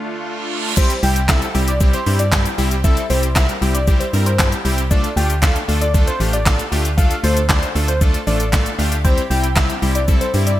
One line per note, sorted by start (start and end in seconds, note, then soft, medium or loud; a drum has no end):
0.00 0.73 D3 medium
0.00 0.73 A3 medium
0.00 0.73 D4 medium
0.00 0.73 F4 medium
0.00 reverse cymbal medium
0.77 0.94 G3 loud
0.77 0.94 C4 medium
0.77 0.94 E4 medium
0.77 0.94 G4 loud
0.77 1.00 C5 loud
0.77 kick loud
0.77 crash loud
0.77 shaker medium
0.90 closed hi-hat medium
0.90 shaker medium
1.03 1.43 C2 loud
1.03 1.20 G3 medium
1.03 1.20 C4 medium
1.03 1.20 E4 medium
1.03 1.20 G4 medium
1.03 1.26 G5 medium
1.03 open hi-hat medium
1.03 shaker medium
1.16 closed hi-hat medium
1.16 shaker medium
1.28 1.46 G3 medium
1.28 1.46 C4 medium
1.28 1.46 E4 medium
1.28 1.46 A4 medium
1.28 1.41 E5 medium
1.28 kick loud
1.28 snare loud
1.28 clap medium
1.28 clap loud
1.28 shaker medium
1.42 closed hi-hat medium
1.42 shaker medium
1.54 1.95 C2 loud
1.54 1.72 G3 medium
1.54 1.72 C4 medium
1.54 1.72 E4 medium
1.54 1.72 G4 medium
1.54 open hi-hat medium
1.54 shaker medium
1.68 1.79 D5 medium
1.68 closed hi-hat medium
1.68 shaker medium
1.80 1.97 G3 medium
1.80 1.98 C4 medium
1.80 1.98 E4 medium
1.80 1.98 G4 loud
1.80 kick loud
1.80 shaker medium
1.93 2.05 C5 medium
1.93 closed hi-hat medium
1.93 shaker medium
2.06 2.47 G2 loud
2.06 2.23 G3 medium
2.06 2.23 C4 medium
2.06 2.24 E4 medium
2.06 2.24 G4 medium
2.06 open hi-hat medium
2.06 shaker medium
2.19 2.42 D5 medium
2.19 closed hi-hat medium
2.19 shaker medium
2.32 2.49 G3 medium
2.32 2.49 C4 medium
2.32 2.50 E4 medium
2.32 2.50 G4 medium
2.32 kick loud
2.32 snare medium
2.32 clap loud
2.32 shaker medium
2.46 closed hi-hat medium
2.46 shaker medium
2.58 2.99 C2 medium
2.58 2.75 G3 medium
2.58 2.75 C4 medium
2.58 2.75 E4 medium
2.58 2.75 G4 loud
2.58 open hi-hat medium
2.58 shaker medium
2.71 closed hi-hat medium
2.71 shaker medium
2.84 3.01 G3 loud
2.84 3.01 C4 medium
2.84 3.01 E4 medium
2.84 3.01 A4 loud
2.84 3.07 E5 loud
2.84 kick loud
2.84 shaker medium
2.97 closed hi-hat medium
2.97 shaker medium
3.10 3.50 C2 loud
3.10 3.27 G3 medium
3.10 3.27 C4 medium
3.10 3.27 E4 medium
3.10 3.27 G4 medium
3.10 3.33 C5 medium
3.10 open hi-hat medium
3.10 shaker medium
3.23 closed hi-hat medium
3.23 shaker medium
3.35 3.53 G3 medium
3.35 3.53 C4 medium
3.35 3.53 E4 medium
3.35 3.53 A#4 medium
3.35 3.47 E5 medium
3.35 kick loud
3.35 snare loud
3.35 clap medium
3.35 clap loud
3.35 shaker medium
3.49 closed hi-hat medium
3.49 shaker medium
3.62 4.02 C2 loud
3.62 3.79 G3 medium
3.62 3.79 C4 medium
3.62 3.79 E4 medium
3.62 3.79 G4 medium
3.62 open hi-hat medium
3.62 shaker medium
3.74 3.86 D5 medium
3.74 closed hi-hat medium
3.74 shaker medium
3.87 4.05 G3 loud
3.87 4.05 C4 medium
3.87 4.05 E4 medium
3.87 4.05 G4 loud
3.87 kick loud
3.87 shaker medium
4.00 4.12 C5 medium
4.00 closed hi-hat medium
4.00 shaker medium
4.13 4.54 G2 loud
4.13 4.30 G3 medium
4.13 4.30 C4 medium
4.13 4.31 E4 medium
4.13 4.31 A#4 medium
4.13 open hi-hat medium
4.13 shaker medium
4.26 4.49 C5 medium
4.26 closed hi-hat medium
4.26 shaker medium
4.39 4.56 G3 medium
4.39 4.56 C4 medium
4.39 4.56 E4 medium
4.39 4.56 G4 medium
4.39 kick loud
4.39 snare medium
4.39 clap loud
4.39 shaker medium
4.52 closed hi-hat medium
4.52 shaker medium
4.65 5.05 C2 medium
4.65 4.82 G3 medium
4.65 4.82 C4 medium
4.65 4.82 E4 medium
4.65 4.82 G4 loud
4.65 open hi-hat medium
4.65 shaker medium
4.78 closed hi-hat medium
4.78 shaker medium
4.91 5.08 A3 loud
4.91 5.08 D4 medium
4.91 5.08 F4 medium
4.91 5.08 A4 loud
4.91 5.14 D5 loud
4.91 kick loud
4.91 shaker medium
5.04 closed hi-hat medium
5.04 shaker medium
5.16 5.57 D2 loud
5.16 5.34 A3 medium
5.16 5.34 D4 medium
5.16 5.34 F4 medium
5.16 5.34 G4 medium
5.16 5.39 G5 medium
5.16 open hi-hat medium
5.16 shaker medium
5.30 closed hi-hat medium
5.30 shaker medium
5.42 5.60 A3 medium
5.42 5.60 D4 medium
5.42 5.60 F4 medium
5.42 5.60 A4 medium
5.42 5.54 F5 medium
5.42 kick loud
5.42 snare loud
5.42 clap medium
5.42 clap loud
5.42 shaker medium
5.56 closed hi-hat medium
5.56 shaker medium
5.68 6.09 D2 loud
5.68 5.85 A3 medium
5.68 5.86 D4 medium
5.68 5.86 F4 medium
5.68 5.86 A4 medium
5.68 open hi-hat medium
5.68 shaker medium
5.81 5.93 D5 medium
5.81 closed hi-hat medium
5.81 shaker medium
5.94 6.11 A3 loud
5.94 6.11 D4 medium
5.94 6.11 F4 medium
5.94 6.12 A4 loud
5.94 kick loud
5.94 shaker medium
6.07 6.19 C5 medium
6.07 closed hi-hat medium
6.07 shaker medium
6.20 6.60 A1 loud
6.20 6.37 A3 medium
6.20 6.37 D4 medium
6.20 6.37 F4 medium
6.20 6.37 G4 medium
6.20 open hi-hat medium
6.20 shaker medium
6.33 6.56 D5 medium
6.33 closed hi-hat medium
6.33 shaker medium
6.46 6.63 A3 medium
6.46 6.63 D4 medium
6.46 6.63 F4 medium
6.46 6.63 A4 medium
6.46 kick loud
6.46 snare loud
6.46 clap loud
6.46 shaker medium
6.59 closed hi-hat medium
6.59 shaker medium
6.72 7.12 D2 medium
6.72 6.89 A3 medium
6.72 6.89 D4 medium
6.72 6.89 F4 medium
6.72 6.89 G4 loud
6.72 open hi-hat medium
6.72 shaker medium
6.85 closed hi-hat medium
6.85 shaker medium
6.97 7.15 A3 loud
6.97 7.15 D4 medium
6.97 7.15 F4 medium
6.97 7.15 A4 loud
6.97 7.20 F5 loud
6.97 kick loud
6.97 shaker medium
7.11 closed hi-hat medium
7.11 shaker medium
7.23 7.64 D2 loud
7.23 7.41 A3 medium
7.23 7.41 D4 medium
7.23 7.41 F4 medium
7.23 7.41 A4 medium
7.23 7.47 C5 medium
7.23 open hi-hat medium
7.23 shaker medium
7.37 closed hi-hat medium
7.37 shaker medium
7.49 7.66 A3 medium
7.49 7.67 D4 medium
7.49 7.67 F4 medium
7.49 7.67 C5 medium
7.49 7.61 D5 medium
7.49 kick loud
7.49 snare loud
7.49 clap medium
7.49 clap loud
7.49 shaker medium
7.63 closed hi-hat medium
7.63 shaker medium
7.75 8.16 D2 loud
7.75 7.92 A3 medium
7.75 7.92 D4 medium
7.75 7.92 F4 medium
7.75 7.93 A4 medium
7.75 open hi-hat medium
7.75 shaker medium
7.88 8.00 C5 medium
7.88 closed hi-hat medium
7.88 shaker medium
8.01 8.18 A3 loud
8.01 8.18 D4 medium
8.01 8.18 F4 medium
8.01 8.19 A4 loud
8.01 kick loud
8.01 shaker medium
8.14 closed hi-hat medium
8.14 shaker medium
8.27 8.67 A1 loud
8.27 8.44 A3 medium
8.27 8.44 D4 medium
8.27 8.44 F4 medium
8.27 8.44 A4 medium
8.27 8.50 D5 medium
8.27 open hi-hat medium
8.27 shaker medium
8.40 closed hi-hat medium
8.40 shaker medium
8.53 8.70 A3 medium
8.53 8.70 D4 medium
8.53 8.70 F4 medium
8.53 8.70 A4 medium
8.53 kick loud
8.53 snare medium
8.53 clap loud
8.53 shaker medium
8.66 closed hi-hat medium
8.66 shaker medium
8.78 9.19 D2 medium
8.78 8.96 A3 medium
8.78 8.96 D4 medium
8.78 8.96 F4 medium
8.78 8.96 G4 loud
8.78 open hi-hat medium
8.78 shaker medium
8.92 closed hi-hat medium
8.92 shaker medium
9.04 10.60 C3 medium
9.04 9.22 G3 loud
9.04 10.60 G3 medium
9.04 9.22 C4 medium
9.04 9.22 E4 medium
9.04 10.60 E4 medium
9.04 9.22 G4 loud
9.04 9.27 C5 loud
9.04 kick loud
9.04 shaker medium
9.18 closed hi-hat medium
9.18 shaker medium
9.30 9.71 C2 loud
9.30 9.47 G3 medium
9.30 9.48 C4 medium
9.30 9.48 E4 medium
9.30 9.48 G4 medium
9.30 9.53 G5 medium
9.30 open hi-hat medium
9.30 shaker medium
9.44 closed hi-hat medium
9.44 shaker medium
9.56 9.73 G3 medium
9.56 9.74 C4 medium
9.56 9.74 E4 medium
9.56 9.74 G4 medium
9.56 9.68 E5 medium
9.56 kick loud
9.56 snare loud
9.56 clap medium
9.56 clap loud
9.56 shaker medium
9.70 closed hi-hat medium
9.70 shaker medium
9.82 10.23 C2 loud
9.82 9.99 G3 medium
9.82 9.99 C4 medium
9.82 9.99 E4 medium
9.82 10.00 G4 medium
9.82 open hi-hat medium
9.82 shaker medium
9.95 10.07 D5 medium
9.95 closed hi-hat medium
9.95 shaker medium
10.08 10.25 G3 loud
10.08 10.25 C4 medium
10.08 10.25 E4 medium
10.08 10.25 A4 loud
10.08 kick loud
10.08 shaker medium
10.21 10.32 C5 medium
10.21 closed hi-hat medium
10.21 shaker medium
10.34 10.60 G2 loud
10.34 10.51 G3 medium
10.34 10.51 C4 medium
10.34 10.51 E4 medium
10.34 10.51 G4 medium
10.34 open hi-hat medium
10.34 shaker medium
10.47 10.60 D5 medium
10.47 closed hi-hat medium
10.47 shaker medium